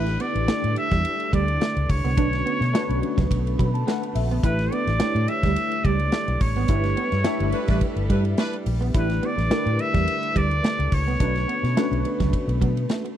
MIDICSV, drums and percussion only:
0, 0, Header, 1, 2, 480
1, 0, Start_track
1, 0, Tempo, 563910
1, 1854, Time_signature, 4, 2, 24, 8
1, 11210, End_track
2, 0, Start_track
2, 0, Title_t, "Drums"
2, 55, Note_on_c, 9, 51, 43
2, 61, Note_on_c, 9, 38, 37
2, 140, Note_off_c, 9, 51, 0
2, 146, Note_off_c, 9, 38, 0
2, 169, Note_on_c, 9, 51, 64
2, 255, Note_off_c, 9, 51, 0
2, 302, Note_on_c, 9, 51, 46
2, 387, Note_off_c, 9, 51, 0
2, 410, Note_on_c, 9, 38, 118
2, 410, Note_on_c, 9, 51, 73
2, 495, Note_off_c, 9, 38, 0
2, 495, Note_off_c, 9, 51, 0
2, 544, Note_on_c, 9, 51, 46
2, 629, Note_off_c, 9, 51, 0
2, 648, Note_on_c, 9, 51, 64
2, 733, Note_off_c, 9, 51, 0
2, 775, Note_on_c, 9, 51, 49
2, 780, Note_on_c, 9, 36, 99
2, 780, Note_on_c, 9, 38, 43
2, 861, Note_off_c, 9, 51, 0
2, 865, Note_off_c, 9, 36, 0
2, 866, Note_off_c, 9, 38, 0
2, 891, Note_on_c, 9, 51, 78
2, 976, Note_off_c, 9, 51, 0
2, 1020, Note_on_c, 9, 51, 42
2, 1105, Note_off_c, 9, 51, 0
2, 1133, Note_on_c, 9, 36, 99
2, 1137, Note_on_c, 9, 51, 64
2, 1218, Note_off_c, 9, 36, 0
2, 1222, Note_off_c, 9, 51, 0
2, 1260, Note_on_c, 9, 51, 45
2, 1345, Note_off_c, 9, 51, 0
2, 1373, Note_on_c, 9, 51, 59
2, 1377, Note_on_c, 9, 38, 107
2, 1458, Note_off_c, 9, 51, 0
2, 1462, Note_off_c, 9, 38, 0
2, 1503, Note_on_c, 9, 51, 47
2, 1589, Note_off_c, 9, 51, 0
2, 1613, Note_on_c, 9, 36, 93
2, 1614, Note_on_c, 9, 46, 82
2, 1614, Note_on_c, 9, 51, 61
2, 1698, Note_off_c, 9, 36, 0
2, 1699, Note_off_c, 9, 46, 0
2, 1699, Note_off_c, 9, 51, 0
2, 1745, Note_on_c, 9, 51, 35
2, 1830, Note_off_c, 9, 51, 0
2, 1851, Note_on_c, 9, 36, 125
2, 1851, Note_on_c, 9, 44, 65
2, 1851, Note_on_c, 9, 51, 82
2, 1936, Note_off_c, 9, 36, 0
2, 1936, Note_off_c, 9, 44, 0
2, 1936, Note_off_c, 9, 51, 0
2, 1982, Note_on_c, 9, 51, 44
2, 1988, Note_on_c, 9, 38, 38
2, 2067, Note_off_c, 9, 51, 0
2, 2073, Note_off_c, 9, 38, 0
2, 2100, Note_on_c, 9, 51, 61
2, 2185, Note_off_c, 9, 51, 0
2, 2229, Note_on_c, 9, 51, 45
2, 2232, Note_on_c, 9, 38, 40
2, 2314, Note_off_c, 9, 51, 0
2, 2317, Note_off_c, 9, 38, 0
2, 2340, Note_on_c, 9, 38, 118
2, 2340, Note_on_c, 9, 51, 75
2, 2425, Note_off_c, 9, 38, 0
2, 2425, Note_off_c, 9, 51, 0
2, 2471, Note_on_c, 9, 51, 46
2, 2556, Note_off_c, 9, 51, 0
2, 2578, Note_on_c, 9, 51, 59
2, 2664, Note_off_c, 9, 51, 0
2, 2705, Note_on_c, 9, 36, 103
2, 2710, Note_on_c, 9, 51, 53
2, 2715, Note_on_c, 9, 38, 42
2, 2790, Note_off_c, 9, 36, 0
2, 2795, Note_off_c, 9, 51, 0
2, 2800, Note_off_c, 9, 38, 0
2, 2815, Note_on_c, 9, 36, 96
2, 2820, Note_on_c, 9, 51, 86
2, 2900, Note_off_c, 9, 36, 0
2, 2905, Note_off_c, 9, 51, 0
2, 2953, Note_on_c, 9, 51, 45
2, 3038, Note_off_c, 9, 51, 0
2, 3058, Note_on_c, 9, 36, 105
2, 3067, Note_on_c, 9, 51, 61
2, 3143, Note_off_c, 9, 36, 0
2, 3152, Note_off_c, 9, 51, 0
2, 3192, Note_on_c, 9, 51, 41
2, 3277, Note_off_c, 9, 51, 0
2, 3300, Note_on_c, 9, 51, 62
2, 3304, Note_on_c, 9, 38, 100
2, 3385, Note_off_c, 9, 51, 0
2, 3390, Note_off_c, 9, 38, 0
2, 3432, Note_on_c, 9, 51, 45
2, 3517, Note_off_c, 9, 51, 0
2, 3536, Note_on_c, 9, 46, 79
2, 3536, Note_on_c, 9, 51, 68
2, 3622, Note_off_c, 9, 46, 0
2, 3622, Note_off_c, 9, 51, 0
2, 3670, Note_on_c, 9, 51, 36
2, 3755, Note_off_c, 9, 51, 0
2, 3774, Note_on_c, 9, 36, 114
2, 3776, Note_on_c, 9, 44, 68
2, 3776, Note_on_c, 9, 51, 82
2, 3860, Note_off_c, 9, 36, 0
2, 3861, Note_off_c, 9, 44, 0
2, 3861, Note_off_c, 9, 51, 0
2, 3905, Note_on_c, 9, 51, 41
2, 3910, Note_on_c, 9, 38, 36
2, 3990, Note_off_c, 9, 51, 0
2, 3996, Note_off_c, 9, 38, 0
2, 4020, Note_on_c, 9, 51, 62
2, 4105, Note_off_c, 9, 51, 0
2, 4148, Note_on_c, 9, 51, 47
2, 4151, Note_on_c, 9, 38, 38
2, 4233, Note_off_c, 9, 51, 0
2, 4236, Note_off_c, 9, 38, 0
2, 4253, Note_on_c, 9, 38, 115
2, 4253, Note_on_c, 9, 51, 73
2, 4338, Note_off_c, 9, 38, 0
2, 4338, Note_off_c, 9, 51, 0
2, 4390, Note_on_c, 9, 51, 44
2, 4475, Note_off_c, 9, 51, 0
2, 4495, Note_on_c, 9, 51, 69
2, 4580, Note_off_c, 9, 51, 0
2, 4625, Note_on_c, 9, 36, 106
2, 4625, Note_on_c, 9, 51, 52
2, 4630, Note_on_c, 9, 38, 43
2, 4710, Note_off_c, 9, 36, 0
2, 4710, Note_off_c, 9, 51, 0
2, 4715, Note_off_c, 9, 38, 0
2, 4736, Note_on_c, 9, 51, 82
2, 4821, Note_off_c, 9, 51, 0
2, 4866, Note_on_c, 9, 51, 47
2, 4951, Note_off_c, 9, 51, 0
2, 4977, Note_on_c, 9, 36, 97
2, 4979, Note_on_c, 9, 51, 61
2, 5062, Note_off_c, 9, 36, 0
2, 5064, Note_off_c, 9, 51, 0
2, 5103, Note_on_c, 9, 51, 45
2, 5188, Note_off_c, 9, 51, 0
2, 5210, Note_on_c, 9, 51, 61
2, 5214, Note_on_c, 9, 38, 114
2, 5295, Note_off_c, 9, 51, 0
2, 5299, Note_off_c, 9, 38, 0
2, 5345, Note_on_c, 9, 51, 43
2, 5430, Note_off_c, 9, 51, 0
2, 5454, Note_on_c, 9, 46, 80
2, 5454, Note_on_c, 9, 51, 66
2, 5456, Note_on_c, 9, 36, 104
2, 5539, Note_off_c, 9, 46, 0
2, 5539, Note_off_c, 9, 51, 0
2, 5541, Note_off_c, 9, 36, 0
2, 5583, Note_on_c, 9, 51, 34
2, 5668, Note_off_c, 9, 51, 0
2, 5687, Note_on_c, 9, 44, 70
2, 5687, Note_on_c, 9, 51, 79
2, 5693, Note_on_c, 9, 36, 114
2, 5772, Note_off_c, 9, 44, 0
2, 5772, Note_off_c, 9, 51, 0
2, 5778, Note_off_c, 9, 36, 0
2, 5819, Note_on_c, 9, 51, 41
2, 5825, Note_on_c, 9, 38, 37
2, 5904, Note_off_c, 9, 51, 0
2, 5910, Note_off_c, 9, 38, 0
2, 5934, Note_on_c, 9, 51, 66
2, 6019, Note_off_c, 9, 51, 0
2, 6061, Note_on_c, 9, 51, 47
2, 6064, Note_on_c, 9, 38, 39
2, 6146, Note_off_c, 9, 51, 0
2, 6149, Note_off_c, 9, 38, 0
2, 6167, Note_on_c, 9, 38, 110
2, 6167, Note_on_c, 9, 51, 78
2, 6252, Note_off_c, 9, 38, 0
2, 6252, Note_off_c, 9, 51, 0
2, 6301, Note_on_c, 9, 51, 45
2, 6386, Note_off_c, 9, 51, 0
2, 6405, Note_on_c, 9, 51, 65
2, 6490, Note_off_c, 9, 51, 0
2, 6536, Note_on_c, 9, 51, 52
2, 6541, Note_on_c, 9, 38, 43
2, 6542, Note_on_c, 9, 36, 102
2, 6621, Note_off_c, 9, 51, 0
2, 6626, Note_off_c, 9, 38, 0
2, 6627, Note_off_c, 9, 36, 0
2, 6648, Note_on_c, 9, 51, 75
2, 6652, Note_on_c, 9, 36, 92
2, 6733, Note_off_c, 9, 51, 0
2, 6737, Note_off_c, 9, 36, 0
2, 6781, Note_on_c, 9, 51, 46
2, 6866, Note_off_c, 9, 51, 0
2, 6894, Note_on_c, 9, 36, 108
2, 6895, Note_on_c, 9, 51, 67
2, 6979, Note_off_c, 9, 36, 0
2, 6980, Note_off_c, 9, 51, 0
2, 7020, Note_on_c, 9, 51, 44
2, 7105, Note_off_c, 9, 51, 0
2, 7130, Note_on_c, 9, 51, 59
2, 7134, Note_on_c, 9, 38, 108
2, 7215, Note_off_c, 9, 51, 0
2, 7219, Note_off_c, 9, 38, 0
2, 7263, Note_on_c, 9, 51, 45
2, 7348, Note_off_c, 9, 51, 0
2, 7373, Note_on_c, 9, 46, 80
2, 7373, Note_on_c, 9, 51, 62
2, 7458, Note_off_c, 9, 46, 0
2, 7458, Note_off_c, 9, 51, 0
2, 7508, Note_on_c, 9, 51, 37
2, 7593, Note_off_c, 9, 51, 0
2, 7612, Note_on_c, 9, 44, 70
2, 7612, Note_on_c, 9, 51, 84
2, 7614, Note_on_c, 9, 36, 126
2, 7697, Note_off_c, 9, 44, 0
2, 7697, Note_off_c, 9, 51, 0
2, 7699, Note_off_c, 9, 36, 0
2, 7742, Note_on_c, 9, 51, 42
2, 7747, Note_on_c, 9, 38, 38
2, 7827, Note_off_c, 9, 51, 0
2, 7832, Note_off_c, 9, 38, 0
2, 7856, Note_on_c, 9, 51, 59
2, 7941, Note_off_c, 9, 51, 0
2, 7988, Note_on_c, 9, 51, 48
2, 7991, Note_on_c, 9, 38, 38
2, 8073, Note_off_c, 9, 51, 0
2, 8076, Note_off_c, 9, 38, 0
2, 8095, Note_on_c, 9, 38, 118
2, 8095, Note_on_c, 9, 51, 73
2, 8180, Note_off_c, 9, 38, 0
2, 8180, Note_off_c, 9, 51, 0
2, 8227, Note_on_c, 9, 51, 43
2, 8312, Note_off_c, 9, 51, 0
2, 8333, Note_on_c, 9, 51, 65
2, 8419, Note_off_c, 9, 51, 0
2, 8464, Note_on_c, 9, 36, 102
2, 8464, Note_on_c, 9, 51, 46
2, 8469, Note_on_c, 9, 38, 43
2, 8549, Note_off_c, 9, 36, 0
2, 8549, Note_off_c, 9, 51, 0
2, 8554, Note_off_c, 9, 38, 0
2, 8577, Note_on_c, 9, 51, 82
2, 8662, Note_off_c, 9, 51, 0
2, 8706, Note_on_c, 9, 51, 44
2, 8792, Note_off_c, 9, 51, 0
2, 8817, Note_on_c, 9, 36, 105
2, 8821, Note_on_c, 9, 51, 66
2, 8902, Note_off_c, 9, 36, 0
2, 8906, Note_off_c, 9, 51, 0
2, 8946, Note_on_c, 9, 51, 42
2, 9031, Note_off_c, 9, 51, 0
2, 9058, Note_on_c, 9, 51, 58
2, 9062, Note_on_c, 9, 38, 108
2, 9143, Note_off_c, 9, 51, 0
2, 9147, Note_off_c, 9, 38, 0
2, 9190, Note_on_c, 9, 51, 43
2, 9275, Note_off_c, 9, 51, 0
2, 9295, Note_on_c, 9, 46, 79
2, 9295, Note_on_c, 9, 51, 61
2, 9296, Note_on_c, 9, 36, 101
2, 9380, Note_off_c, 9, 46, 0
2, 9380, Note_off_c, 9, 51, 0
2, 9381, Note_off_c, 9, 36, 0
2, 9432, Note_on_c, 9, 51, 39
2, 9518, Note_off_c, 9, 51, 0
2, 9534, Note_on_c, 9, 44, 71
2, 9535, Note_on_c, 9, 36, 111
2, 9535, Note_on_c, 9, 51, 82
2, 9620, Note_off_c, 9, 44, 0
2, 9620, Note_off_c, 9, 51, 0
2, 9621, Note_off_c, 9, 36, 0
2, 9665, Note_on_c, 9, 51, 41
2, 9671, Note_on_c, 9, 38, 39
2, 9750, Note_off_c, 9, 51, 0
2, 9756, Note_off_c, 9, 38, 0
2, 9781, Note_on_c, 9, 51, 64
2, 9866, Note_off_c, 9, 51, 0
2, 9912, Note_on_c, 9, 51, 50
2, 9915, Note_on_c, 9, 38, 37
2, 9997, Note_off_c, 9, 51, 0
2, 10000, Note_off_c, 9, 38, 0
2, 10020, Note_on_c, 9, 38, 125
2, 10020, Note_on_c, 9, 51, 73
2, 10105, Note_off_c, 9, 38, 0
2, 10105, Note_off_c, 9, 51, 0
2, 10152, Note_on_c, 9, 51, 43
2, 10237, Note_off_c, 9, 51, 0
2, 10256, Note_on_c, 9, 51, 64
2, 10341, Note_off_c, 9, 51, 0
2, 10385, Note_on_c, 9, 36, 96
2, 10386, Note_on_c, 9, 51, 50
2, 10391, Note_on_c, 9, 38, 40
2, 10471, Note_off_c, 9, 36, 0
2, 10471, Note_off_c, 9, 51, 0
2, 10476, Note_off_c, 9, 38, 0
2, 10496, Note_on_c, 9, 36, 95
2, 10497, Note_on_c, 9, 51, 74
2, 10581, Note_off_c, 9, 36, 0
2, 10582, Note_off_c, 9, 51, 0
2, 10630, Note_on_c, 9, 51, 47
2, 10715, Note_off_c, 9, 51, 0
2, 10738, Note_on_c, 9, 36, 100
2, 10742, Note_on_c, 9, 51, 66
2, 10823, Note_off_c, 9, 36, 0
2, 10827, Note_off_c, 9, 51, 0
2, 10871, Note_on_c, 9, 51, 48
2, 10956, Note_off_c, 9, 51, 0
2, 10975, Note_on_c, 9, 51, 57
2, 10979, Note_on_c, 9, 38, 101
2, 11060, Note_off_c, 9, 51, 0
2, 11064, Note_off_c, 9, 38, 0
2, 11112, Note_on_c, 9, 51, 42
2, 11197, Note_off_c, 9, 51, 0
2, 11210, End_track
0, 0, End_of_file